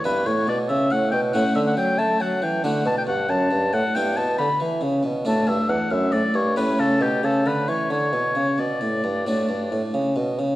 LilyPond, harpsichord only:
<<
  \new Staff \with { instrumentName = "Harpsichord" } { \time 12/8 \key d \major \tempo 4. = 91 <b e'>2. <a cis' e'>2. | <a d' fis'>2. <b e' g'>2. | <a d' fis'>2. <a cis' g'>2. | r2. <a d' fis'>2. | }
  \new Staff \with { instrumentName = "Harpsichord" } { \clef bass \time 12/8 \key d \major g,8 a,8 b,8 cis8 a,8 b,8 a,8 d8 fis8 a8 fis8 e8 | d8 b,8 g,8 fis,8 g,8 a,8 g,8 b,8 d8 e8 cis8 b,8 | a,8 g,8 e,8 fis,8 a,8 g,8 a,8 cis8 b,8 cis8 d8 e8 | d8 b,8 cis8 b,8 a,8 g,8 a,8 g,8 a,8 cis8 b,8 cis8 | }
>>